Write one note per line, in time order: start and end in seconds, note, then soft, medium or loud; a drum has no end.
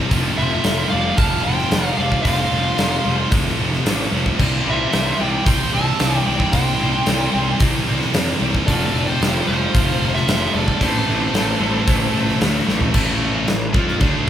0.00 0.10 G3 medium
0.00 0.13 C4 loud
0.00 3.35 C4 medium
0.00 0.10 E4 medium
0.10 0.30 F1 loud
0.10 0.36 F2 loud
0.10 0.36 C3 loud
0.10 0.38 F3 loud
0.10 2.24 A3 loud
0.10 2.27 C4 medium
0.10 2.25 F4 loud
0.10 kick loud
0.10 open hi-hat medium
0.36 0.57 F1 loud
0.36 0.62 F2 medium
0.36 0.63 C3 medium
0.36 0.64 F3 medium
0.36 0.88 C5 medium
0.36 0.89 E5 medium
0.63 0.84 F1 medium
0.63 0.89 F2 medium
0.63 0.89 C3 medium
0.63 0.91 F3 medium
0.63 snare medium
0.63 open hi-hat medium
0.89 1.11 F1 medium
0.89 1.14 F2 medium
0.89 1.16 C3 medium
0.89 1.16 F3 loud
0.89 1.16 D5 medium
0.89 1.18 F5 medium
1.16 1.37 F1 loud
1.16 1.41 F2 loud
1.16 1.42 C3 loud
1.16 1.43 F3 loud
1.16 1.43 F5 medium
1.16 1.43 A5 loud
1.16 kick loud
1.16 open hi-hat medium
1.42 1.64 F1 loud
1.42 1.68 F2 medium
1.42 1.69 C3 loud
1.42 1.70 F3 loud
1.42 1.94 C5 medium
1.42 1.88 G5 loud
1.58 snare soft
1.70 1.91 F1 loud
1.70 1.95 F2 medium
1.70 1.95 C3 medium
1.70 1.96 F3 medium
1.70 snare loud
1.70 open hi-hat medium
1.88 1.98 F5 loud
1.96 2.17 F1 medium
1.96 2.21 F2 medium
1.96 2.22 C3 medium
1.96 2.23 F3 medium
1.96 2.23 D5 medium
1.96 2.21 F5 medium
2.12 kick medium
2.22 2.44 F1 loud
2.22 2.49 F2 loud
2.22 2.49 C3 loud
2.22 2.51 F3 loud
2.22 4.38 A3 loud
2.22 3.28 C5 medium
2.22 3.27 F5 medium
2.22 kick medium
2.22 open hi-hat medium
2.27 4.41 C4 loud
2.27 4.39 F4 loud
2.50 2.71 F1 medium
2.50 2.76 F2 medium
2.50 2.77 C3 medium
2.50 2.77 F3 medium
2.77 2.97 F1 medium
2.77 3.02 F2 medium
2.77 3.03 C3 medium
2.77 3.04 F3 medium
2.77 snare loud
2.77 open hi-hat medium
3.04 3.24 F1 medium
3.04 3.30 F2 medium
3.04 3.30 C3 loud
3.04 3.32 F3 loud
3.31 3.51 F1 loud
3.31 3.57 F2 loud
3.31 3.58 C3 loud
3.31 3.58 F3 loud
3.31 kick loud
3.31 open hi-hat medium
3.58 3.78 F1 medium
3.58 3.84 F2 medium
3.58 3.85 C3 medium
3.58 3.85 F3 loud
3.73 snare soft
3.85 4.04 A1 medium
3.85 4.10 F2 medium
3.85 4.10 C3 medium
3.85 4.12 F3 medium
3.85 snare loud
3.85 open hi-hat medium
4.11 4.31 F1 medium
4.11 4.37 F2 medium
4.11 4.36 C3 medium
4.11 4.37 F3 medium
4.26 kick medium
4.37 4.58 C2 loud
4.37 4.63 C3 medium
4.37 6.51 E3 loud
4.37 4.64 G3 loud
4.37 4.65 C4 loud
4.37 kick medium
4.37 crash loud
4.43 6.53 E4 loud
4.64 4.85 C2 medium
4.64 4.91 C3 medium
4.64 4.92 G3 medium
4.64 4.92 C4 medium
4.68 5.17 C5 medium
4.68 5.23 E5 medium
4.91 5.12 C2 loud
4.91 5.18 C3 medium
4.91 5.18 G3 medium
4.91 5.19 C4 medium
4.91 snare loud
4.91 open hi-hat medium
5.18 5.39 C2 medium
5.18 5.45 C3 medium
5.18 5.46 G3 loud
5.18 5.47 C4 loud
5.18 5.45 D5 medium
5.18 5.48 G5 medium
5.46 5.65 C2 loud
5.46 5.72 C3 medium
5.46 5.72 G3 loud
5.46 5.74 C4 loud
5.46 5.71 G5 medium
5.46 5.74 C6 loud
5.46 kick loud
5.46 open hi-hat medium
5.73 5.92 C2 medium
5.73 5.98 C3 loud
5.73 5.99 G3 loud
5.73 6.00 C4 loud
5.73 6.23 E5 medium
5.73 6.26 A5 loud
5.99 6.19 C2 medium
5.99 6.25 C3 medium
5.99 6.26 G3 medium
5.99 6.27 C4 medium
5.99 snare loud
5.99 open hi-hat medium
6.26 6.46 C2 medium
6.26 6.51 C3 medium
6.26 6.52 G3 medium
6.26 6.54 C4 medium
6.26 6.51 D5 medium
6.26 6.52 G5 medium
6.40 kick medium
6.52 6.72 C2 loud
6.52 6.78 C3 medium
6.52 8.65 E3 loud
6.52 6.78 G3 loud
6.52 6.80 C4 loud
6.52 8.66 E4 loud
6.52 7.56 C5 medium
6.52 7.56 G5 medium
6.52 kick medium
6.52 open hi-hat medium
6.79 6.99 C2 medium
6.79 7.04 C3 medium
6.79 7.05 G3 medium
6.79 7.06 C4 medium
7.05 7.26 C2 medium
7.05 7.32 C3 medium
7.05 7.33 G3 medium
7.05 7.35 C4 medium
7.05 snare loud
7.05 open hi-hat medium
7.33 7.53 C2 medium
7.33 7.58 C3 medium
7.33 7.59 G3 medium
7.33 7.60 C4 medium
7.59 7.79 C2 loud
7.59 7.85 C3 loud
7.59 7.86 G3 loud
7.59 7.87 C4 loud
7.59 kick loud
7.59 open hi-hat medium
7.86 8.06 C2 loud
7.86 8.12 C3 loud
7.86 8.12 G3 medium
7.86 8.14 C4 medium
8.01 snare soft
8.13 8.33 F2 loud
8.13 8.37 C3 medium
8.13 8.39 G3 medium
8.13 8.40 C4 medium
8.13 snare loud
8.13 open hi-hat medium
8.39 8.60 C2 medium
8.39 8.65 C3 medium
8.39 8.65 G3 medium
8.39 10.81 C4 medium
8.55 kick medium
8.66 8.87 F1 loud
8.66 8.92 F2 loud
8.66 8.94 C3 medium
8.66 8.94 F3 loud
8.66 10.81 A3 medium
8.66 10.83 C4 loud
8.66 10.81 F4 medium
8.66 9.04 A4 medium
8.66 9.08 D5 loud
8.66 kick medium
8.66 open hi-hat medium
8.94 9.13 F1 medium
8.94 9.19 F2 medium
8.94 9.20 C3 medium
8.94 9.20 F3 medium
9.07 9.45 G4 medium
9.07 9.46 C5 medium
9.20 9.40 F1 loud
9.20 9.46 F2 medium
9.20 9.47 C3 medium
9.20 9.48 F3 medium
9.20 snare loud
9.20 open hi-hat medium
9.47 9.67 F1 medium
9.47 9.73 F2 loud
9.47 9.73 C3 loud
9.47 9.73 F3 loud
9.47 10.10 F4 medium
9.47 10.10 C5 loud
9.74 9.94 F1 loud
9.74 10.00 F2 loud
9.74 10.01 C3 loud
9.74 10.00 F3 loud
9.74 kick loud
9.74 open hi-hat medium
10.01 10.20 F1 medium
10.01 10.25 F2 medium
10.01 10.26 C3 medium
10.01 10.26 F3 loud
10.14 10.52 C5 medium
10.14 10.54 E5 loud
10.14 snare soft
10.27 10.46 F1 loud
10.27 10.52 F2 medium
10.27 10.53 C3 medium
10.27 10.53 F3 medium
10.27 snare loud
10.27 open hi-hat medium
10.53 10.73 F1 medium
10.53 10.79 F2 medium
10.53 10.79 C3 medium
10.53 10.79 F3 medium
10.53 10.79 A4 medium
10.53 10.82 D5 loud
10.68 kick medium
10.79 11.00 A1 loud
10.79 11.06 A2 medium
10.79 11.06 E3 loud
10.79 11.07 A3 loud
10.79 12.94 C4 loud
10.79 12.38 A4 medium
10.79 12.38 C5 medium
10.79 kick loud
10.79 open hi-hat medium
10.84 12.94 E4 loud
11.07 11.27 A1 medium
11.07 11.31 A2 medium
11.07 11.32 E3 medium
11.07 11.33 A3 medium
11.32 11.53 A1 medium
11.32 11.58 A2 medium
11.32 11.59 E3 medium
11.32 11.60 A3 medium
11.32 snare medium
11.32 open hi-hat medium
11.60 11.79 A1 medium
11.60 11.85 A2 medium
11.60 11.86 E3 medium
11.60 11.87 A3 loud
11.87 12.07 A1 loud
11.87 12.12 A2 loud
11.87 12.13 E3 loud
11.87 12.13 A3 loud
11.87 kick loud
11.87 open hi-hat medium
12.13 12.33 A1 medium
12.13 12.40 A2 medium
12.13 12.40 E3 medium
12.13 12.41 A3 medium
12.29 snare soft
12.41 12.60 D2 loud
12.41 12.65 A2 medium
12.41 12.66 E3 medium
12.41 12.66 A3 loud
12.41 snare loud
12.41 open hi-hat medium
12.67 12.87 A1 medium
12.67 12.92 A2 medium
12.67 12.93 E3 medium
12.67 12.93 A3 medium
12.67 snare medium
12.81 floor tom medium
12.93 13.44 A1 loud
12.93 13.45 A2 loud
12.93 13.46 E3 loud
12.93 13.47 A3 loud
12.93 kick loud
12.93 crash loud
12.93 crash medium
13.47 13.73 A1 medium
13.47 13.69 A2 medium
13.47 13.69 E3 medium
13.47 snare loud
13.47 crash medium
13.73 14.00 F2 medium
13.73 13.99 F3 loud
13.73 14.00 C4 loud
13.73 14.00 F4 loud
13.73 kick loud
13.88 snare soft
14.00 14.26 D2 loud
14.00 14.27 D3 loud
14.00 14.27 A3 loud
14.00 14.27 D4 loud
14.00 kick loud
14.00 crash medium
14.26 14.30 A2 medium